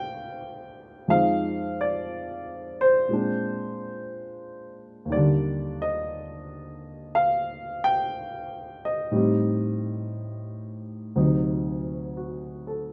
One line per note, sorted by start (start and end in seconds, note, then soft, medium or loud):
0.00 1.08 A#2 medium
0.00 1.08 A#3 medium
0.00 1.09 C4 soft
0.00 1.10 D4 medium
0.00 1.10 F5 medium
0.00 1.14 G5 loud
1.08 3.10 F2 medium
1.08 3.10 F3 soft
1.08 3.09 G#3 soft
1.08 3.10 D#4 medium
1.08 1.75 F5 medium
1.81 2.83 D5 medium
2.81 3.76 C5 medium
3.09 5.10 A#2 soft
3.09 5.11 G#3 soft
3.09 5.12 C4 soft
3.13 5.13 D4 medium
5.05 9.11 D#2 soft
5.09 9.13 D#3 soft
5.09 9.11 G3 soft
5.09 5.27 D5 medium
5.17 9.17 D3 medium
5.82 7.17 D#5 medium
7.15 7.30 F5 medium
7.84 8.86 G5 loud
8.85 10.81 D#5 medium
9.11 11.14 A2 medium
9.11 11.15 G3 medium
9.11 11.16 C4 soft
9.16 11.16 D#4 medium
11.16 12.93 D2 medium
11.16 12.93 C3 soft
11.16 12.93 F#3 soft
11.16 12.93 D#4 medium
12.17 12.93 F#4 soft
12.67 12.93 A4 soft